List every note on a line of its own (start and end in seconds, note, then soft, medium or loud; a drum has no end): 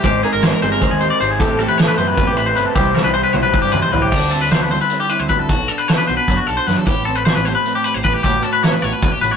0.03 0.22 G#1 medium
0.03 0.40 G#2 medium
0.03 0.41 D#3 medium
0.03 1.38 G#3 medium
0.03 0.25 G#3 medium
0.03 0.24 C4 medium
0.03 0.21 D#4 medium
0.03 0.23 G4 medium
0.03 0.24 C5 medium
0.03 kick loud
0.03 closed hi-hat medium
0.23 0.42 G#3 medium
0.23 1.42 C4 medium
0.23 0.44 C4 medium
0.23 0.44 D#4 medium
0.23 0.32 G#4 medium
0.23 0.63 A#4 medium
0.23 closed hi-hat medium
0.33 0.51 G#1 medium
0.33 0.43 A#4 medium
0.42 1.20 G#2 medium
0.42 1.18 D#3 medium
0.42 1.03 G#3 medium
0.42 1.02 C4 medium
0.42 0.99 D#4 medium
0.42 0.63 G4 medium
0.42 0.52 C5 medium
0.42 snare medium
0.42 closed hi-hat medium
0.52 0.62 A#4 medium
0.62 0.80 G1 medium
0.62 1.03 G4 medium
0.62 0.82 G#4 medium
0.62 0.71 C5 medium
0.62 closed hi-hat medium
0.72 0.91 A#4 medium
0.82 1.38 D#3 medium
0.82 1.23 C5 medium
0.82 kick medium
0.82 closed hi-hat medium
0.91 1.09 D#2 medium
0.91 1.01 G#4 medium
1.00 1.20 G#3 medium
1.00 1.22 C4 medium
1.00 1.22 D#4 medium
1.00 1.22 G4 medium
1.00 1.10 C5 medium
1.00 closed hi-hat soft
1.10 1.20 D5 medium
1.19 1.38 G#1 medium
1.19 1.38 D#3 medium
1.19 1.39 G#3 medium
1.19 1.41 C4 medium
1.19 1.40 D#4 medium
1.19 1.43 G4 medium
1.19 1.30 C5 medium
1.19 closed hi-hat medium
1.30 1.40 G#4 medium
1.39 1.67 A1 medium
1.39 1.76 A2 medium
1.39 2.37 A2 medium
1.39 1.78 E3 medium
1.39 1.60 A3 medium
1.39 1.59 C4 medium
1.39 1.80 C4 medium
1.39 1.58 E4 medium
1.39 1.59 G4 medium
1.39 1.60 A4 medium
1.39 kick loud
1.39 closed hi-hat medium
1.43 1.99 G4 medium
1.58 2.75 A3 medium
1.58 1.78 A3 medium
1.58 1.79 C4 medium
1.58 1.80 E4 medium
1.58 1.80 G4 medium
1.58 1.69 A4 medium
1.58 closed hi-hat soft
1.68 1.87 E2 medium
1.68 1.78 B4 medium
1.77 2.56 A2 medium
1.77 2.54 E3 medium
1.77 2.38 A3 medium
1.77 2.37 C4 medium
1.77 2.79 C4 medium
1.77 2.35 E4 medium
1.77 1.98 A4 medium
1.77 1.87 C5 medium
1.77 snare loud
1.77 closed hi-hat medium
1.88 1.97 B4 medium
1.98 2.28 F#2 medium
1.98 2.80 G4 medium
1.98 2.17 B4 medium
1.98 2.07 C5 medium
1.98 closed hi-hat medium
2.07 2.27 B4 medium
2.18 2.77 B4 medium
2.18 kick medium
2.18 closed hi-hat medium
2.26 2.54 A1 medium
2.26 2.37 G4 medium
2.36 2.57 A2 medium
2.36 2.55 A3 medium
2.36 2.57 C4 medium
2.36 2.58 E4 medium
2.36 2.47 B4 medium
2.36 closed hi-hat soft
2.46 2.56 C5 medium
2.55 2.65 G1 medium
2.55 2.77 B2 medium
2.55 2.75 E3 medium
2.55 2.75 A3 medium
2.55 2.77 C4 medium
2.55 2.77 E4 medium
2.55 2.65 B4 medium
2.55 closed hi-hat medium
2.65 2.75 A4 medium
2.74 2.94 C2 medium
2.74 3.11 C3 medium
2.74 3.53 C3 medium
2.74 3.13 E3 medium
2.74 2.96 G3 medium
2.74 2.94 C4 medium
2.74 2.93 E4 medium
2.74 2.95 G4 medium
2.74 3.70 C5 medium
2.74 kick medium
2.74 closed hi-hat medium
2.79 2.96 G3 medium
2.79 3.15 E4 medium
2.79 3.35 G4 medium
2.94 4.69 G3 medium
2.94 3.14 G3 medium
2.94 3.14 C4 medium
2.94 3.15 E4 medium
2.94 3.05 A4 medium
2.94 snare medium
3.04 3.23 C2 medium
3.04 3.13 B4 medium
3.12 3.92 C3 medium
3.12 3.89 E3 medium
3.12 3.74 G3 medium
3.12 3.73 C4 loud
3.12 3.71 E4 medium
3.12 3.23 C5 medium
3.17 3.34 E4 medium
3.23 3.33 B4 medium
3.33 3.52 B1 medium
3.33 3.44 E4 medium
3.33 3.42 C5 medium
3.33 high tom medium
3.43 3.73 G4 soft
3.43 3.61 B4 medium
3.54 4.10 C3 medium
3.54 kick loud
3.54 mid tom medium
3.62 3.81 G2 medium
3.62 3.72 G4 medium
3.72 3.91 G3 soft
3.72 3.92 C4 medium
3.72 3.93 E4 medium
3.72 4.11 G4 medium
3.72 3.82 B4 medium
3.72 mid tom medium
3.82 3.92 C5 medium
3.91 4.10 A1 medium
3.91 4.10 E3 medium
3.91 4.11 G3 medium
3.91 4.12 C4 medium
3.91 4.11 E4 medium
3.91 4.12 E4 medium
3.91 4.02 B4 medium
3.91 floor tom medium
4.02 4.10 G4 medium
4.12 4.58 D2 medium
4.12 5.50 D3 medium
4.12 4.32 G4 medium
4.12 4.52 A4 medium
4.12 kick medium
4.12 crash medium
4.31 4.90 C4 soft
4.31 4.41 A4 medium
4.31 closed hi-hat soft
4.41 4.51 B4 medium
4.51 5.30 A4 medium
4.51 4.62 C5 medium
4.51 snare medium
4.51 closed hi-hat medium
4.60 4.79 D2 medium
4.60 4.71 B4 medium
4.70 5.49 G3 medium
4.70 5.09 E4 soft
4.70 4.81 C5 medium
4.70 closed hi-hat soft
4.81 5.00 B4 medium
4.90 5.50 C4 medium
4.90 closed hi-hat medium
5.00 5.10 G4 medium
5.10 5.50 E4 soft
5.10 5.20 B4 medium
5.10 closed hi-hat soft
5.20 5.29 D2 medium
5.20 5.29 C5 medium
5.29 5.51 D2 medium
5.29 5.48 A2 soft
5.29 5.39 B4 medium
5.29 5.48 B4 medium
5.29 kick medium
5.29 closed hi-hat soft
5.39 5.49 A4 medium
5.49 5.67 B1 medium
5.49 6.84 B2 medium
5.49 5.68 F#4 medium
5.49 5.88 A4 medium
5.49 kick medium
5.49 closed hi-hat medium
5.68 6.27 D4 soft
5.68 5.78 A4 medium
5.68 closed hi-hat soft
5.78 5.88 B4 medium
5.88 6.67 A4 medium
5.88 5.97 C5 medium
5.88 snare medium
5.88 closed hi-hat medium
5.98 6.07 B4 medium
6.07 6.18 B1 medium
6.07 6.89 B3 medium
6.07 6.47 F#4 soft
6.07 6.16 C5 medium
6.07 closed hi-hat medium
6.17 6.37 B4 medium
6.28 6.37 F#2 medium
6.28 6.85 D4 soft
6.28 kick medium
6.28 closed hi-hat medium
6.37 6.47 F#4 medium
6.47 6.57 B1 medium
6.47 6.85 F#4 medium
6.47 6.57 A4 medium
6.47 closed hi-hat medium
6.57 6.67 C5 medium
6.67 6.77 F#2 medium
6.67 6.85 F#3 medium
6.67 6.77 B4 medium
6.67 6.87 B4 soft
6.67 snare soft
6.67 closed hi-hat medium
6.77 6.88 E2 medium
6.77 6.86 A4 medium
6.86 7.32 A1 medium
6.86 8.23 A2 medium
6.86 7.05 G4 medium
6.86 7.26 B4 medium
6.86 kick medium
6.86 closed hi-hat medium
7.05 7.64 C4 soft
7.05 7.15 A4 medium
7.05 closed hi-hat soft
7.15 7.25 B4 medium
7.25 7.35 C5 medium
7.25 8.05 C5 medium
7.25 snare medium
7.25 closed hi-hat medium
7.35 7.54 A1 medium
7.35 7.45 B4 medium
7.45 8.25 A3 medium
7.45 7.87 G4 medium
7.45 7.54 C5 medium
7.45 closed hi-hat medium
7.55 7.75 B4 medium
7.66 8.25 C4 medium
7.66 closed hi-hat medium
7.75 7.84 G4 medium
7.84 8.26 G4 medium
7.84 7.94 B4 medium
7.84 closed hi-hat soft
7.94 8.04 A1 medium
7.94 8.04 C5 medium
8.04 8.14 A1 medium
8.04 8.30 E3 medium
8.04 8.14 B4 medium
8.04 8.23 B4 medium
8.04 kick medium
8.04 closed hi-hat medium
8.14 8.22 G4 medium
8.23 8.42 A1 medium
8.23 9.01 A2 medium
8.23 8.83 A3 medium
8.23 8.44 C#4 medium
8.23 8.83 F#4 medium
8.23 8.43 G4 medium
8.23 kick medium
8.23 closed hi-hat medium
8.27 8.62 B4 medium
8.43 9.37 C#4 medium
8.43 8.52 A4 medium
8.43 closed hi-hat soft
8.53 8.63 B4 medium
8.63 9.37 B4 medium
8.63 8.72 C#5 medium
8.63 snare medium
8.63 closed hi-hat medium
8.72 8.82 B4 medium
8.82 8.92 A1 medium
8.82 9.37 A3 medium
8.82 9.37 F#4 soft
8.82 8.93 C#5 medium
8.82 closed hi-hat medium
8.93 9.12 B4 medium
9.02 9.12 E2 medium
9.02 9.22 A2 medium
9.02 kick medium
9.02 closed hi-hat medium
9.12 9.21 G4 medium
9.21 9.31 A1 medium
9.21 9.37 B2 medium
9.21 9.31 B4 medium
9.21 closed hi-hat medium
9.31 9.37 C#5 medium